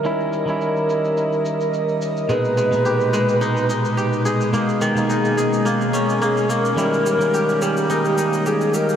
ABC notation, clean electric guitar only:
X:1
M:4/4
L:1/16
Q:"Swing 16ths" 1/4=107
K:G#m
V:1 name="Clean electric guitar" clef=bass
[D,=G,CE]3 [D,G,CE]12- [D,G,CE] | [A,,B,,G,D]3 [A,,B,,G,D]12- [A,,B,,G,D] | [B,,G,A,D]3 [B,,G,A,D]12- [B,,G,A,D] | [D,=G,CE]3 [D,G,C]12- [D,G,C] |]